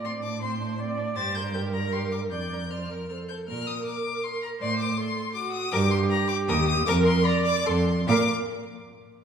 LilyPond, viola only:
\new Staff \with { instrumentName = "Viola" } { \time 3/4 \key bes \major \tempo 4 = 158 d''4 c''4 d''4 | c''4 bes'2 | d''4 c''8 bes'8 a'4 | bes'2. |
c''4 a'4 fis'4 | g'2. | bes'4 d''4 a'8 r8 | bes'8 r2 r8 | }